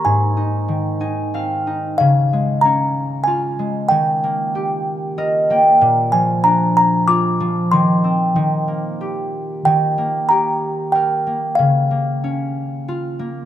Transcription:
X:1
M:3/4
L:1/8
Q:1/4=94
K:Ebmix
V:1 name="Music box"
a4- a z | f2 b2 a2 | g4- g z | z a b b =d'2 |
c'4- c' z | g2 b2 g2 | f4- f z |]
V:2 name="Harp"
z3 a f2 | z6 | z4 e g | z6 |
z6 | z6 | z6 |]
V:3 name="Harp"
A,, E E, E C E | D, A, D2 F A, | E, B, G2 B B, | B,, F, =D2 F F, |
E, C E, B, G2 | E, B, G2 B B, | D, B, D2 F B, |]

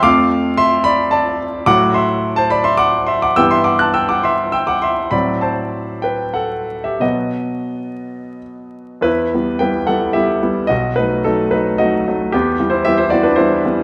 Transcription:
X:1
M:3/4
L:1/16
Q:1/4=107
K:Ddor
V:1 name="Grand piano"
[fd']4 [ec']2 [db]2 [da]2 z2 | [K:Em] [fd']2 [ec']3 [ca] [db] [ec'] [fd']2 [ec'] [fd'] | [ge'] [ec'] [fd'] [af'] [ge'] [fd'] [ec']2 [ge'] [fd'] [ec']2 | [db]2 [ca]4 [Bg]2 [Af]3 [Ge] |
[F^d]8 z4 | [EB]4 [Bg]2 [Af]2 [Ge]4 | [F^d]2 [^DB]2 [DA]2 [DB]2 [Fd]4 | [B,G]3 [Ec] [Ge] [Ec] [Fd] [DB] [Ec]4 |]
V:2 name="Grand piano" clef=bass
[F,,A,F]12 | [K:Em] [A,,F,A,F]12 | [G,,E,B,G]12 | [A,,F,CF]12 |
[B,,F,B,]12 | E,,2 [G,B,E]2 [G,B,E]2 [G,B,E]2 [G,B,E]2 [G,B,E]2 | B,,,2 [F,A,]2 [F,A,]2 [F,A,]2 [F,A,^D]2 [F,A,D]2 | E,,2 [E,G,B,]2 [E,G,B,]2 [E,G,B,]2 [E,G,B,]2 [E,G,B,]2 |]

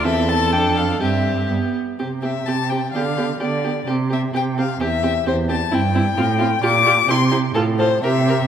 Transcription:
X:1
M:2/4
L:1/8
Q:1/4=128
K:C
V:1 name="Violin"
e a g f | e2 z2 | z e a g | f2 d2 |
z e g f | e2 c a | [K:F] g4 | d'2 c' z |
z c e2 |]
V:2 name="Violin"
A4 | G3 z | G G G G | G G G G |
G G G G | G G G G | [K:F] E E F F | G G G G |
A A B B |]
V:3 name="Viola"
C2 D2 | C2 B, z | C C C C | B, B, B, B, |
C C C C | C C C C | [K:F] C C C C | F F E E |
F F G G |]
V:4 name="Cello" clef=bass
E,,2 F,,2 | G,,2 G,, z | C,2 C,2 | D,2 D,2 |
C,2 C,2 | E,,2 E,,2 | [K:F] G,,2 A,,2 | B,,2 C,2 |
A,,2 C,2 |]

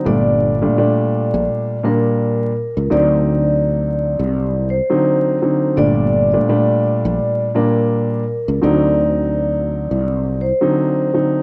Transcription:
X:1
M:4/4
L:1/16
Q:"Swing 16ths" 1/4=84
K:Gm
V:1 name="Vibraphone"
d8- d2 B6 | d8- d2 c6 | d8- d2 B6 | d8- d2 c6 |]
V:2 name="Grand piano" clef=bass
[B,,G,A,D]3 [B,,G,A,D] [B,,G,A,D]6 [B,,G,B,D]4 z2 | [D,^F,CE]8- [D,F,CE]2 z [D,F,CE]3 [D,F,CE]2 | [B,,G,A,D]3 [B,,G,A,D] [B,,G,A,D]6 [B,,G,B,D]4 z2 | [D,^F,CE]8- [D,F,CE]2 z [D,F,CE]3 [D,F,CE]2 |]
V:3 name="Fretless electric bass" clef=bass
G,,,4 z3 B,,, z6 z ^C,, | D,,6- D,, C,,4 z4 z | G,,,4 z3 B,,, z6 z ^C,, | D,,6- D,, C,,4 z4 z |]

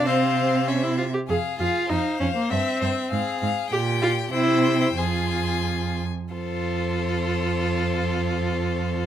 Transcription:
X:1
M:2/4
L:1/16
Q:1/4=97
K:Fm
V:1 name="Violin"
f4 =e2 z2 | f2 f2 f2 f2 | =e2 e2 f2 f2 | g4 g4 |
a6 z2 | c8- | c8 |]
V:2 name="Violin"
c6 z2 | A4 c4 | =e2 c2 A4 | G4 c4 |
A6 z2 | =A8- | =A8 |]
V:3 name="Viola"
C4 D =E F G | A2 F2 E2 D B, | C6 z2 | G2 F2 =E3 E |
F6 z2 | F8- | F8 |]
V:4 name="Cello" clef=bass
C,6 z2 | F,,2 F,,2 F,,2 F,,2 | G,,2 G,,2 A,,2 A,,2 | B,,4 C,4 |
F,,6 z2 | F,,8- | F,,8 |]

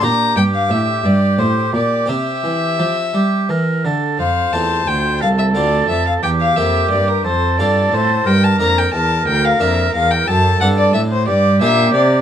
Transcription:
X:1
M:6/8
L:1/16
Q:3/8=59
K:F
V:1 name="Violin"
b2 g f e2 d2 c2 d2 | e8- e2 z2 | f2 a2 g2 f e d2 e f | g f e2 d B c2 d2 c2 |
g a b g a2 g f e2 f g | a2 ^f d e c d2 e2 d2 |]
V:2 name="Oboe"
G12 | G6 G2 B2 A2 | c6 A6 | G6 A6 |
B12 | A4 z2 G6 |]
V:3 name="Harpsichord"
[DG]12 | [CG]12 | z2 [A,CF]6 [A,CF]4 | z2 [B,CG]4 z2 [CFA]4 |
z2 [B,DB]6 [B,DB]4 | z2 [CDA]4 z2 [B,DG]4 |]
V:4 name="Harpsichord" clef=bass
B,,2 G,,2 A,,2 G,,2 A,,2 B,,2 | C,2 E,2 F,2 G,2 E,2 D,2 | F,,2 E,,2 D,,2 C,,2 D,,2 F,,2 | E,,2 F,,2 G,,2 F,,2 G,,2 A,,2 |
G,,2 F,,2 E,,2 D,,2 F,,2 E,,2 | ^F,,2 G,,2 A,,2 G,,2 B,,2 C,2 |]
V:5 name="Cello" clef=bass
B,,2 G,,2 A,,2 G,,2 A,,2 B,,2 | C,2 E,2 F,2 G,2 E,2 D,2 | F,,2 E,,2 D,,2 C,,2 D,,2 F,,2 | E,,2 F,,2 G,,2 F,,2 G,,2 A,,2 |
G,,2 F,,2 E,,2 D,,2 F,,2 E,,2 | ^F,,2 G,,2 A,,2 G,,2 B,,2 C,2 |]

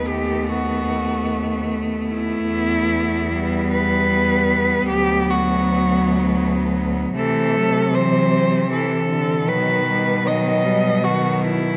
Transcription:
X:1
M:3/4
L:1/8
Q:1/4=77
K:Bphr
V:1 name="Cello"
G F3 z E- | E3 B3 | G F3 z2 | A2 c2 A2 |
B2 ^d2 F E |]
V:2 name="Cello" clef=bass
B,6 | B,6- | B,6 | A,2 E,2 E,2 |
F, G, F,2 ^D,2 |]
V:3 name="Cello" clef=bass
A,6- | A,2 G,4 | F,6 | E, F,3 E, D, |
^D,2 D, G, F,2 |]
V:4 name="Cello" clef=bass
^D,,6 | E,,6 | D,,6 | C,6 |
B,,6 |]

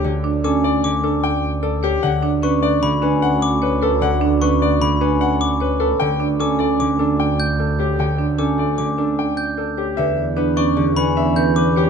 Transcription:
X:1
M:5/4
L:1/8
Q:1/4=151
K:Glyd
V:1 name="Glockenspiel"
z2 d' z d' z4 z | z2 c' z b z2 d' z2 | z2 c' z b z2 d' z2 | z2 d' z d' z2 g' z2 |
z2 d' z d' z2 g' z2 | [K:Edor] z3 c' z b z g' d' z |]
V:2 name="Grand piano"
z2 A d z A g z A G | f z B d z B f z B A | f z B d z B f z B A | g z A d z A g z A G |
g z A d z A g z A G | [K:Edor] e z B d z B e z B G |]
V:3 name="Marimba"
z D C z2 D z2 d c | z D C z2 D z2 c B | z D C z2 D z2 c B | z D C A z D z2 d c |
z D C A z D z2 d c | [K:Edor] B z D C G z D B z c |]
V:4 name="Harp" clef=bass
[D,C]2 C2 D,6 | D,2 B,2 D, C4- C | D,2 B,2 D, C4- C | D,2 C2 D, D4- D |
D,2 C2 D, D4- D | [K:Edor] D,2 B,2 D, C2 D,3 |]
V:5 name="Double bass section" clef=bass
D,,8- D,,2 | D,,8- D,,2- | D,,8- D,,2 | D,,8- D,,2- |
D,,8- D,,2 | [K:Edor] E,,8- E,,2 |]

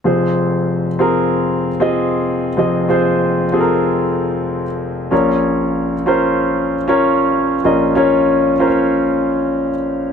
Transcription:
X:1
M:4/4
L:1/16
Q:"Swing 16ths" 1/4=95
K:Fphr
V:1 name="Grand piano"
[CFAc]4- [CFAc] z [CFAB]4 z [CFAe]4 z | [CFAe]2 [CFAc]3 z [CFA=AB]6- [CF_A=AB] z3 | [DFBd]4- [DFBd] z [DFBc]4 z [DFBd]4 z | [DFBe]2 [DFBd]3 z [DFBcd]6- [DFBcd] z3 |]
V:2 name="Grand piano" clef=bass
[F,,,F,,]16 | [F,,,F,,]16 | [B,,,B,,]16 | [B,,,B,,]16 |]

